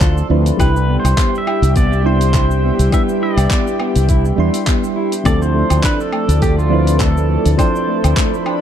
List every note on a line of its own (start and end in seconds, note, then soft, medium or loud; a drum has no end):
0.00 0.21 D2 medium
0.00 0.29 F3 medium
0.00 0.30 C4 medium
0.00 0.31 D4 medium
0.00 0.31 E4 medium
0.00 0.16 F4 medium
0.00 0.27 A4 medium
0.00 0.56 A4 medium
0.00 0.61 A4 medium
0.00 0.56 D5 medium
0.00 0.56 C6 loud
0.00 kick loud
0.00 clap medium
0.00 open hi-hat soft
0.00 cabasa medium
0.18 cabasa soft
0.29 0.50 D2 medium
0.29 0.56 F3 medium
0.29 0.45 A3 medium
0.29 0.56 C4 medium
0.29 0.56 D4 medium
0.29 0.56 E4 medium
0.29 0.57 B4 medium
0.46 open hi-hat medium
0.46 cabasa medium
0.57 0.96 C2 loud
0.57 2.01 G3 medium
0.57 2.02 D4 medium
0.57 2.02 E4 medium
0.57 0.74 E4 medium
0.57 5.22 G4 medium
0.57 2.02 G4 medium
0.57 0.99 B4 loud
0.57 5.22 E5 medium
0.57 5.22 G5 medium
0.57 kick loud
0.57 open hi-hat soft
0.57 cabasa medium
0.57 low woodblock medium
0.77 cabasa soft
0.88 1.04 B3 medium
1.00 1.39 C5 loud
1.04 1.13 C2 loud
1.04 open hi-hat medium
1.04 cabasa medium
1.04 low woodblock medium
1.17 1.33 B3 medium
1.17 kick loud
1.17 clap medium
1.17 open hi-hat soft
1.17 cabasa medium
1.35 1.76 E5 loud
1.35 cabasa soft
1.47 1.61 E4 medium
1.47 low woodblock medium
1.62 2.70 C2 loud
1.62 open hi-hat soft
1.62 cabasa medium
1.76 1.91 B3 medium
1.76 2.06 D5 loud
1.76 kick loud
1.76 open hi-hat soft
1.76 cabasa medium
1.93 cabasa soft
2.03 2.88 G3 medium
2.03 2.21 B3 medium
2.03 2.89 D4 medium
2.03 2.90 E4 medium
2.03 2.96 C5 loud
2.03 2.90 C6 loud
2.21 open hi-hat medium
2.21 cabasa medium
2.34 2.49 E4 loud
2.34 kick loud
2.34 clap medium
2.34 open hi-hat soft
2.34 cabasa medium
2.51 cabasa soft
2.63 2.78 B3 medium
2.79 2.88 C2 medium
2.79 open hi-hat soft
2.79 cabasa medium
2.90 4.34 G3 medium
2.90 3.08 B3 medium
2.90 4.35 D4 medium
2.90 4.35 E4 medium
2.90 4.36 B4 loud
2.90 3.02 E5 loud
2.90 kick loud
2.90 open hi-hat soft
2.90 cabasa medium
2.90 low woodblock medium
3.09 cabasa soft
3.22 3.36 E4 loud
3.22 4.06 D5 loud
3.37 3.46 C2 medium
3.37 open hi-hat medium
3.37 cabasa medium
3.37 low woodblock medium
3.51 3.66 B3 medium
3.51 kick loud
3.51 clap loud
3.51 open hi-hat soft
3.51 cabasa medium
3.67 cabasa soft
3.80 3.95 B3 medium
3.80 low woodblock medium
3.96 4.31 C2 medium
3.96 open hi-hat medium
3.96 cabasa medium
4.09 4.24 E4 loud
4.09 kick loud
4.09 open hi-hat soft
4.09 cabasa medium
4.25 cabasa soft
4.36 4.49 E2 medium
4.36 5.21 G3 medium
4.36 4.53 B3 medium
4.36 5.22 D4 medium
4.36 5.23 E4 medium
4.36 5.23 C6 loud
4.54 open hi-hat medium
4.54 cabasa medium
4.67 4.82 B3 medium
4.67 kick loud
4.67 clap medium
4.67 open hi-hat soft
4.67 cabasa medium
4.84 cabasa soft
4.96 5.11 E4 loud
5.12 open hi-hat medium
5.12 cabasa medium
5.24 5.62 D2 loud
5.24 6.67 F3 medium
5.24 5.41 A3 medium
5.24 6.68 C4 medium
5.24 6.68 D4 medium
5.24 6.69 E4 medium
5.24 8.61 A4 medium
5.24 5.42 D5 loud
5.24 8.61 D5 medium
5.24 kick loud
5.24 open hi-hat soft
5.24 cabasa medium
5.24 low woodblock medium
5.28 6.69 A4 medium
5.42 5.85 C5 loud
5.42 cabasa soft
5.54 5.70 A3 medium
5.70 5.79 D2 loud
5.70 open hi-hat medium
5.70 cabasa medium
5.70 low woodblock medium
5.83 5.98 D4 loud
5.83 6.01 B4 loud
5.83 kick medium
5.83 clap loud
5.83 open hi-hat soft
5.83 cabasa medium
6.01 6.44 A4 medium
6.01 cabasa soft
6.12 6.28 A3 medium
6.12 low woodblock medium
6.29 7.36 D2 medium
6.29 open hi-hat medium
6.29 cabasa medium
6.41 6.57 A3 medium
6.41 6.58 G4 medium
6.41 kick loud
6.41 open hi-hat soft
6.41 cabasa medium
6.59 7.01 F4 medium
6.59 cabasa soft
6.69 7.55 F3 loud
6.69 7.55 C4 medium
6.69 6.85 D4 loud
6.69 7.55 D4 medium
6.69 7.56 E4 medium
6.69 7.56 B4 loud
6.87 open hi-hat medium
6.87 cabasa medium
7.00 7.15 A3 medium
7.00 7.60 A4 medium
7.00 kick loud
7.00 clap loud
7.00 open hi-hat soft
7.00 cabasa medium
7.17 cabasa soft
7.29 7.44 A3 medium
7.46 7.54 D2 medium
7.46 open hi-hat medium
7.46 cabasa medium
7.57 8.61 F3 medium
7.57 8.61 C4 medium
7.57 7.73 D4 medium
7.57 8.61 D4 medium
7.57 8.61 E4 medium
7.57 8.61 A4 loud
7.57 8.61 C5 loud
7.57 8.61 B5 medium
7.57 kick loud
7.57 open hi-hat soft
7.57 cabasa medium
7.57 low woodblock medium
7.76 cabasa soft
7.87 8.03 A3 medium
8.04 8.13 D2 medium
8.04 open hi-hat medium
8.04 cabasa medium
8.04 low woodblock medium
8.17 8.32 A3 medium
8.17 kick loud
8.17 clap loud
8.17 open hi-hat soft
8.17 cabasa medium
8.34 cabasa soft
8.46 8.60 D4 loud
8.46 low woodblock medium